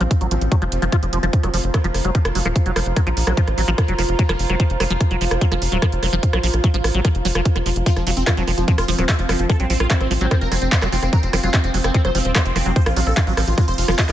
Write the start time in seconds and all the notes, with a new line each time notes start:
Already playing: F3 C4 F4 C5 F5
0.01 A#1 F3, closed hi-hat
0.11 kick, closed hi-hat
0.21 A1 F#3, closed hi-hat
0.31 A1 F3, closed hi-hat
0.41 A1, closed hi-hat
0.52 F#3, kick, closed hi-hat
0.62 F1 F3, closed hi-hat
0.72 F1, closed hi-hat
0.82 F1 F3, closed hi-hat
0.92 F4, kick, closed hi-hat
1.03 F1 F3, closed hi-hat
1.13 F1 F3, closed hi-hat
1.23 F1 F3, closed hi-hat
1.33 F4, kick, closed hi-hat
1.40 F1 F#3 A#5, cross-stick, closed hi-hat
1.54 F1 F3, open hi-hat
1.64 F1, closed hi-hat
1.74 F#3, kick, cross-stick, closed hi-hat
1.84 F1 F3, closed hi-hat
1.94 F1, cross-stick, open hi-hat
2.05 F1 F#3, closed hi-hat
2.15 F3, kick, closed hi-hat
2.25 F1, cross-stick, closed hi-hat
2.35 F1 F#3, open hi-hat
2.45 D#1 F3, cross-stick, closed hi-hat
2.56 kick, closed hi-hat
2.66 F1 F#3, closed hi-hat
2.76 F1 F3, cross-stick, open hi-hat
2.86 F1, closed hi-hat
2.96 F#3, kick, cross-stick, closed hi-hat
3.07 A#1 F3, closed hi-hat
3.17 A#1, open hi-hat
3.27 A#1 F#3, cross-stick, closed hi-hat
3.37 F3, kick, closed hi-hat
3.48 A1, cross-stick, closed hi-hat
3.58 A1 F#3, open hi-hat
3.68 A1 F3, closed hi-hat
3.78 kick, cross-stick, closed hi-hat
3.88 F1 F#3, closed hi-hat
3.99 F1 F3, cross-stick, open hi-hat
4.09 F1, closed hi-hat
4.19 F#3, kick, closed hi-hat
4.29 F1 F3, cross-stick, closed hi-hat
4.39 F1, open hi-hat
4.50 F1 F#3, cross-stick, closed hi-hat
4.60 F3, kick, closed hi-hat
4.70 F1, closed hi-hat
4.80 F1 F#3, cross-stick, open hi-hat
4.90 F1 F3, closed hi-hat
5.01 kick, cross-stick, closed hi-hat
5.11 F1 F#3, closed hi-hat
5.21 F1 F3, open hi-hat
5.31 F1, cross-stick, closed hi-hat
5.41 F#3, kick, closed hi-hat
5.52 F1 F3, cross-stick, closed hi-hat
5.62 F1, open hi-hat
5.72 D#1 F#3, closed hi-hat
5.82 F3, kick, cross-stick, closed hi-hat
5.92 F1, closed hi-hat
6.03 F1 F#3, cross-stick, open hi-hat
6.13 F1 F3, closed hi-hat
6.23 kick, closed hi-hat
6.33 A#1 F#3, cross-stick, closed hi-hat
6.43 A#1 F3, open hi-hat
6.54 A#1, cross-stick, closed hi-hat
6.64 F#3, kick, closed hi-hat
6.74 A1 F3, closed hi-hat
6.84 A1, cross-stick, open hi-hat
6.94 A1 F#3, closed hi-hat
7.05 F3, kick, cross-stick, closed hi-hat
7.15 F1, closed hi-hat
7.25 F1 F#3, open hi-hat
7.35 F1 F3, cross-stick, closed hi-hat
7.45 kick, closed hi-hat
7.56 F1 F3, cross-stick, closed hi-hat
7.66 F1 F3, open hi-hat
7.76 F1, closed hi-hat
7.86 F3 C4 F4, kick, closed hi-hat
7.93 F1 F3 F5, cross-stick, closed hi-hat
8.07 F1 F3 F#3, open hi-hat
8.17 F1 C4, closed hi-hat
8.27 F3, kick, cross-stick, clap, closed hi-hat
8.37 F1 F3 F#3, closed hi-hat
8.47 F1 F3, cross-stick, open hi-hat
8.58 F1 F3, closed hi-hat
8.68 F3 F#3, kick, closed hi-hat
8.78 F1 F4, cross-stick, closed hi-hat
8.88 F1 F3, open hi-hat
8.98 D#1 F3 F#3, cross-stick, closed hi-hat
9.09 F3 A4, kick, clap, closed hi-hat
9.19 F1 F3, closed hi-hat
9.29 F1 F3 F#3, cross-stick, open hi-hat
9.39 F1 F3, closed hi-hat
9.50 F3 A4, kick, cross-stick, closed hi-hat
9.60 A#1 F#3 C4, closed hi-hat
9.70 A#1 F3 C4, open hi-hat
9.80 A#1 F4, cross-stick, closed hi-hat
9.90 F#3 C4, kick, clap, closed hi-hat
10.01 A1 C4, cross-stick, closed hi-hat
10.11 A1 F3, open hi-hat
10.21 A1 F#3 C4, closed hi-hat
10.31 F3 C4, kick, cross-stick, closed hi-hat
10.41 F1 A#4, closed hi-hat
10.52 F1 F#3 C4, cross-stick, open hi-hat
10.62 F1 C4, closed hi-hat
10.72 F3 C5, kick, clap, closed hi-hat
10.82 F1 F#3 C4, cross-stick, clap, closed hi-hat
10.92 F1 F3 C4, open hi-hat
11.03 F1 C4, cross-stick, closed hi-hat
11.13 F#3 A#4, kick, closed hi-hat
11.23 F1 C4, closed hi-hat
11.33 F1 F3 C4, cross-stick, open hi-hat
11.43 F1 F#3 F4, closed hi-hat
11.54 F3 C4, kick, cross-stick, clap, closed hi-hat
11.64 F1 C4, closed hi-hat
11.74 F1 F#3, open hi-hat
11.84 F1 C4, cross-stick, closed hi-hat
11.94 F3 C4, kick, closed hi-hat
12.05 F1 F#3 C5, cross-stick, closed hi-hat
12.15 F1 F3 C4, open hi-hat
12.25 D#1 C4, closed hi-hat
12.35 F#3 C5, kick, cross-stick, clap, closed hi-hat
12.45 F1 C4, closed hi-hat
12.56 F1 F3 C4, cross-stick, open hi-hat
12.66 F1 F#3 C4, closed hi-hat
12.76 F3 C5, kick, closed hi-hat
12.86 A#1 F4, cross-stick, closed hi-hat
12.96 A#1 F#3 F4, open hi-hat
13.07 A#1 A4, cross-stick, closed hi-hat
13.17 F3 F4, kick, clap, closed hi-hat
13.27 A1 F#3 F4, closed hi-hat
13.37 A1 F3, cross-stick, open hi-hat
13.47 A1 F4, closed hi-hat
13.58 F#3 F4, kick, cross-stick, closed hi-hat
13.68 F1 C5, closed hi-hat
13.78 F1 F4, open hi-hat
13.88 F1 F3 F4, cross-stick, closed hi-hat
13.99 F4 D#5, kick, clap, closed hi-hat
14.09 F1 F3 F4, cross-stick, clap, closed hi-hat